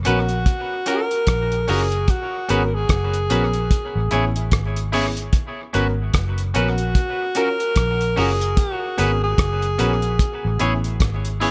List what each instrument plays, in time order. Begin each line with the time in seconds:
0.05 fingered electric bass A#1, grand piano B3 C#4 F#4 A#4, clean electric guitar C#4 F#4 B4, alto saxophone F#4, closed hi-hat
0.29 grand piano F#4 A#4, closed hi-hat
0.46 kick, closed hi-hat
0.86 clean electric guitar C#4 F#4 A#4, grand piano C#4 F4 F#4 A#4, alto saxophone A#4, closed hi-hat
1.11 grand piano F#4 A#4, closed hi-hat
1.27 fingered electric bass A#1, kick, cross-stick, closed hi-hat
1.52 closed hi-hat
1.68 fingered electric bass F#1, clean electric guitar C#4 F#4 A#4, grand piano C#4 F4 F#4 A#4, alto saxophone G#4, open hi-hat
1.92 closed hi-hat
2.08 alto saxophone F#4, kick, closed hi-hat
2.49 fingered electric bass G#1, grand piano B3 C#4 F#4 A#4, clean electric guitar C#4 F#4 B4, alto saxophone G#4, closed hi-hat
2.66 alto saxophone A#4
2.75 alto saxophone G#4
2.89 fingered electric bass F#1, kick, cross-stick, closed hi-hat
3.14 closed hi-hat
3.30 fingered electric bass A#1, grand piano B3 C#4 F#4 A#4, clean electric guitar C#4 F#4 B4, closed hi-hat
3.53 grand piano F#4 A#4, closed hi-hat
3.71 kick, closed hi-hat
3.96 fingered electric bass A1
4.11 fingered electric bass A1, grand piano B3 C#4 E4 G#4, clean electric guitar E4 G#4 C#5, closed hi-hat
4.36 grand piano E4 G#4, closed hi-hat
4.51 fingered electric bass G#1, kick, cross-stick, closed hi-hat
4.76 closed hi-hat
4.92 grand piano B3 C#4 E4 G#4, clean electric guitar E4 G#4 C#5, open hi-hat
5.17 closed hi-hat
5.33 kick, closed hi-hat
5.73 fingered electric bass G#1, grand piano B3 C#4 F#4 A#4, clean electric guitar C#4 F#4 B4, closed hi-hat
6.14 fingered electric bass F#1, kick, cross-stick, closed hi-hat
6.38 closed hi-hat
6.54 fingered electric bass A#1, grand piano B3 C#4 F#4 A#4, clean electric guitar C#4 F#4 B4, alto saxophone F#4, closed hi-hat
6.78 grand piano F#4 A#4, closed hi-hat
6.95 kick, closed hi-hat
7.35 clean electric guitar C#4 F#4 A#4, grand piano C#4 F4 F#4 A#4, alto saxophone A#4, closed hi-hat
7.60 grand piano F#4 A#4, closed hi-hat
7.76 fingered electric bass A#1, kick, cross-stick, closed hi-hat
8.01 closed hi-hat
8.16 fingered electric bass F#1, clean electric guitar C#4 F#4 A#4, grand piano C#4 F4 F#4 A#4, alto saxophone G#4, open hi-hat
8.41 closed hi-hat
8.57 alto saxophone F#4, kick, closed hi-hat
8.97 fingered electric bass G#1, grand piano B3 C#4 F#4 A#4, clean electric guitar C#4 F#4 B4, alto saxophone G#4, closed hi-hat
9.24 alto saxophone G#4
9.38 fingered electric bass F#1, kick, cross-stick, closed hi-hat
9.62 closed hi-hat
9.78 fingered electric bass A#1, grand piano B3 C#4 F#4 A#4, clean electric guitar C#4 F#4 B4, closed hi-hat
10.02 grand piano F#4 A#4, closed hi-hat
10.19 kick, closed hi-hat
10.45 fingered electric bass A1
10.59 fingered electric bass A1, grand piano B3 C#4 E4 G#4, clean electric guitar E4 G#4 C#5, closed hi-hat
10.84 grand piano E4 G#4, closed hi-hat
11.00 fingered electric bass G#1, kick, cross-stick, closed hi-hat
11.25 closed hi-hat
11.40 grand piano B3 C#4 E4 G#4, clean electric guitar E4 G#4 C#5, open hi-hat